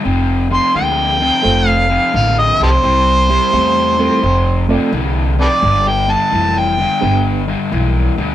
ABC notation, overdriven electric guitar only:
X:1
M:4/4
L:1/8
Q:"Swing" 1/4=86
K:Flyd
V:1 name="Overdriven electric guitar" clef=bass
[F,,C,] [F,,C,] [F,,D,] [F,,C,] [F,,C,] [F,,C,] [F,,D,] [F,,C,] | [C,G,] [C,G,] [C,A,] [C,G,] [F,,C,] [F,,C,] [F,,D,] [F,,C,] | [G,,D,] [G,,D,] [G,,E,] [G,,D,] [G,,D,] [G,,D,] [G,,E,] [G,,D,] |]